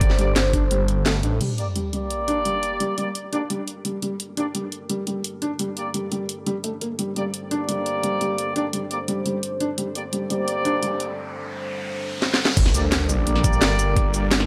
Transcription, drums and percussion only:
0.01 kick loud
0.01 closed hi-hat loud
0.10 snare soft
0.19 closed hi-hat medium
0.36 snare loud
0.36 closed hi-hat loud
0.53 kick medium
0.53 closed hi-hat medium
0.71 closed hi-hat loud
0.88 closed hi-hat medium
1.06 snare loud
1.06 closed hi-hat loud
1.23 closed hi-hat medium
1.41 closed hi-hat medium
1.41 crash medium
1.58 closed hi-hat medium
1.76 closed hi-hat medium
1.93 closed hi-hat medium
2.11 closed hi-hat medium
2.28 closed hi-hat medium
2.45 closed hi-hat medium
2.63 closed hi-hat medium
2.80 closed hi-hat medium
2.98 closed hi-hat medium
3.15 closed hi-hat medium
3.33 closed hi-hat medium
3.50 closed hi-hat medium
3.68 closed hi-hat medium
3.85 closed hi-hat medium
4.02 closed hi-hat medium
4.20 closed hi-hat medium
4.37 closed hi-hat medium
4.55 closed hi-hat medium
4.72 closed hi-hat medium
4.90 closed hi-hat medium
5.07 closed hi-hat medium
5.24 closed hi-hat medium
5.42 closed hi-hat medium
5.59 closed hi-hat medium
5.77 closed hi-hat medium
5.94 closed hi-hat medium
6.12 closed hi-hat medium
6.29 closed hi-hat medium
6.46 closed hi-hat medium
6.64 closed hi-hat medium
6.81 closed hi-hat medium
6.99 closed hi-hat medium
7.16 closed hi-hat medium
7.34 closed hi-hat medium
7.51 closed hi-hat medium
7.69 closed hi-hat medium
7.86 closed hi-hat medium
8.04 closed hi-hat medium
8.21 closed hi-hat medium
8.38 closed hi-hat medium
8.56 closed hi-hat medium
8.73 closed hi-hat medium
8.91 closed hi-hat medium
9.08 closed hi-hat medium
9.26 closed hi-hat medium
9.43 closed hi-hat medium
9.60 closed hi-hat medium
9.78 closed hi-hat loud
9.95 closed hi-hat medium
10.13 closed hi-hat medium
10.30 closed hi-hat medium
10.48 closed hi-hat medium
10.65 closed hi-hat medium
10.83 closed hi-hat medium
11.00 closed hi-hat medium
12.22 snare medium
12.34 snare medium
12.45 snare medium
12.57 kick loud
12.57 closed hi-hat loud
12.57 crash loud
12.66 snare soft
12.74 closed hi-hat medium
12.74 shaker medium
12.92 snare loud
12.92 closed hi-hat loud
13.09 closed hi-hat medium
13.09 shaker medium
13.27 closed hi-hat loud
13.35 snare soft
13.44 kick loud
13.44 closed hi-hat medium
13.44 shaker medium
13.53 shaker soft
13.62 snare loud
13.62 closed hi-hat loud
13.79 closed hi-hat medium
13.79 shaker medium
13.97 kick loud
13.97 closed hi-hat loud
14.14 closed hi-hat medium
14.14 shaker medium
14.31 snare loud
14.31 closed hi-hat medium
14.40 snare medium

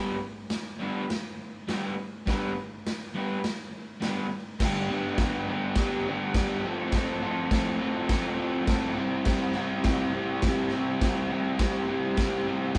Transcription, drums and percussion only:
0.50 snare loud
0.50 open hi-hat medium
1.10 snare loud
1.10 open hi-hat medium
1.68 snare loud
1.68 open hi-hat soft
2.27 kick loud
2.27 snare loud
2.27 open hi-hat medium
2.86 snare loud
2.86 open hi-hat medium
3.44 snare loud
3.44 open hi-hat medium
4.02 snare loud
4.02 open hi-hat medium
4.60 kick loud
4.60 snare loud
4.60 crash loud
4.60 crash medium
5.18 kick loud
5.18 snare loud
5.18 crash medium
5.75 kick loud
5.75 snare loud
5.75 crash medium
6.34 kick loud
6.34 snare loud
6.34 crash medium
6.92 kick loud
6.92 snare loud
6.92 crash medium
7.51 kick loud
7.51 snare loud
7.51 crash medium
8.09 kick loud
8.09 snare loud
8.09 crash medium
8.67 kick loud
8.67 snare loud
8.67 crash medium
9.25 kick loud
9.25 snare loud
9.25 crash medium
9.84 kick loud
9.84 snare loud
9.84 crash medium
10.42 kick loud
10.42 snare loud
10.42 crash medium
11.01 kick loud
11.01 snare loud
11.01 crash medium
11.59 kick loud
11.59 snare loud
11.59 crash medium
12.17 kick loud
12.17 snare loud
12.17 crash medium
12.75 snare loud
12.75 crash medium

